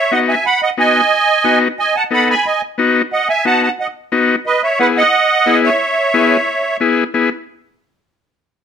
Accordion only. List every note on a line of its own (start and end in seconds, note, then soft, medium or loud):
0.00 0.11 C#5 medium
0.00 0.13 E5 medium
0.12 0.19 D#5 medium
0.12 0.20 F#5 medium
0.28 0.44 E5 medium
0.28 0.46 G#5 medium
0.46 0.61 F#5 medium
0.46 0.61 B5 loud
0.63 0.70 D#5 medium
0.63 0.70 F#5 loud
0.79 1.58 D#5 medium
0.79 1.59 G#5 loud
1.79 1.95 D#5 medium
1.79 1.96 G#5 medium
1.96 2.04 F#5 medium
1.96 2.04 A5 medium
2.13 2.28 F#5 medium
2.13 2.28 B5 loud
2.30 2.45 G#5 medium
2.30 2.47 B5 medium
2.46 2.61 D#5 medium
2.46 2.61 G#5 medium
3.13 3.28 D#5 medium
3.13 3.28 F#5 medium
3.29 3.45 E5 medium
3.29 3.45 G#5 medium
3.46 3.62 F#5 medium
3.46 3.61 A5 loud
3.63 3.71 F#5 medium
3.63 3.70 A5 medium
3.79 3.88 D#5 medium
3.79 3.87 F#5 medium
4.46 4.62 B4 medium
4.46 4.62 D#5 medium
4.63 4.79 C#5 medium
4.63 4.78 E5 medium
4.80 4.88 B4 medium
4.80 4.87 F#5 loud
4.97 5.60 D#5 medium
4.97 5.60 F#5 loud
5.64 6.77 C#5 medium
5.64 6.77 E5 medium